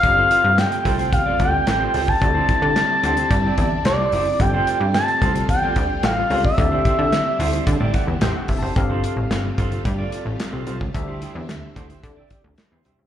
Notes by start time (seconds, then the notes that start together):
Already playing: G3 F5
0.03 G1 C3 A3 C4 F4 G4 A4 D5, kick, closed hi-hat
0.17 F4 A4 C5
0.30 F4 A4 C5, closed hi-hat
0.44 G2
0.58 G5, muted clean electric guitar stroke, snare, clap, closed hi-hat
0.71 muted clean electric guitar stroke, closed hi-hat
0.85 C2 F4 A4 C5, kick, closed hi-hat
0.99 F4 A4 C5, closed hi-hat
1.12 E2 F5, muted clean electric guitar stroke, kick, closed hi-hat
1.26 F4 A4 D5
1.40 D2 C4 F4 G4 A4 D5 G5, kick, closed hi-hat
1.53 muted clean electric guitar stroke
1.67 A1, snare, clap, closed hi-hat
1.81 F4 A4 C5
1.94 C#2 F4 A4 C5, open hi-hat
2.08 A5, muted clean electric guitar stroke, kick
2.21 D2 C4 D4 E4 G4 A4 D5, muted clean electric guitar stroke, kick, closed hi-hat
2.35 E4 G4 C5
2.48 E4 G4 C5, kick, closed hi-hat
2.62 D3, muted clean electric guitar stroke
2.76 muted clean electric guitar stroke, snare, clap, closed hi-hat
2.89 muted clean electric guitar stroke
3.03 D2 E4 G4 C5, closed hi-hat
3.17 E4 G4 C5, closed hi-hat
3.31 G2, muted clean electric guitar stroke, kick, closed hi-hat
3.44 E4 G4 D5
3.57 E2 E4 G4 D5, kick, closed hi-hat
3.71 muted clean electric guitar stroke
3.85 C2 D5, snare, clap, closed hi-hat
3.99 E4 G4 C5
4.12 F#1 E4 G4 C5, open hi-hat
4.26 muted clean electric guitar stroke
4.39 G1 G3 A3 C4 F4 G4 A4 D5 G5, kick, closed hi-hat
4.54 F4 A4 C5
4.67 F4 A4 C5, closed hi-hat
4.80 G2, muted clean electric guitar stroke
4.94 A5, muted clean electric guitar stroke, snare, clap, closed hi-hat
5.08 muted clean electric guitar stroke, closed hi-hat
5.22 C2 F4 A4 C5, kick, closed hi-hat
5.35 F4 A4 C5, closed hi-hat
5.49 E2 G5, muted clean electric guitar stroke, kick, closed hi-hat
5.63 F4 A4 D5
5.76 D2 F4 A4 D5, kick, closed hi-hat
5.90 muted clean electric guitar stroke
6.03 A1 F5, muted clean electric guitar stroke, snare, clap, closed hi-hat
6.17 F4 A4 C5
6.30 C#2 C4 F4 G4 A4 C5 D5, open hi-hat
6.44 E5, muted clean electric guitar stroke, kick
6.57 D2 D3 C4 E4 G4 A4 D5, muted clean electric guitar stroke, kick, closed hi-hat
6.72 E4 G4 C5
6.85 E4 G4 C5, kick, closed hi-hat
6.99 D3, muted clean electric guitar stroke
7.12 muted clean electric guitar stroke, snare, clap, closed hi-hat
7.26 muted clean electric guitar stroke
7.39 D2 E4 G4 C5, open hi-hat
7.53 E4 G4 C5, closed hi-hat
7.67 D3, muted clean electric guitar stroke, kick, closed hi-hat
7.80 A2 E4 G4 D5
7.93 E4 G4 D5 F#5, kick, closed hi-hat
8.07 E2, muted clean electric guitar stroke
8.21 A1 E4 G4 C5 G5, snare, clap, closed hi-hat
8.35 F#5, muted clean electric guitar stroke
8.48 F1 E5, muted clean electric guitar stroke, kick, open hi-hat
8.59 F#1 C5 A5
8.63 E4 G4 C5
8.76 G1 C3 G3 A3 C4 F4 G4 A4 F5, kick, closed hi-hat
8.89 F4 A4 C5
9.03 F4 A4 C5, closed hi-hat
9.17 A1, muted clean electric guitar stroke
9.30 G1, muted clean electric guitar stroke, snare, clap, closed hi-hat
9.44 muted clean electric guitar stroke
9.58 G1 F4 A4 C5, kick, closed hi-hat
9.71 F4 A4 C5, closed hi-hat
9.85 G2, muted clean electric guitar stroke, kick, closed hi-hat
9.99 F4 A4 D5
10.12 F4 A4 D5, closed hi-hat
10.26 A1
10.40 muted clean electric guitar stroke, snare, clap, closed hi-hat
10.53 C2 F4 A4 C5
10.67 C2 F4 A4 C5, closed hi-hat
10.81 C#2, muted clean electric guitar stroke, kick
10.94 D2 D3 C4 D4 E4 F#4 C5 E5, kick, closed hi-hat
11.01 G4
11.08 E4 G4 C5
11.21 E4 G4 C5, closed hi-hat
11.35 E2, muted clean electric guitar stroke
11.49 D2, muted clean electric guitar stroke, snare, clap, closed hi-hat
11.62 muted clean electric guitar stroke
11.76 D2 E4 G4 C5, kick, closed hi-hat
11.89 E4 G4 C5, closed hi-hat
12.03 D3, muted clean electric guitar stroke, kick, closed hi-hat
12.17 E4 G4 D5
12.30 E4 G4 D5, kick, closed hi-hat
12.44 D2, muted clean electric guitar stroke
12.58 muted clean electric guitar stroke, snare, clap, closed hi-hat
12.71 E2 E4 G4 C5
12.85 C2 D4 E4 G4 C5 E5, closed hi-hat
12.99 C#2, muted clean electric guitar stroke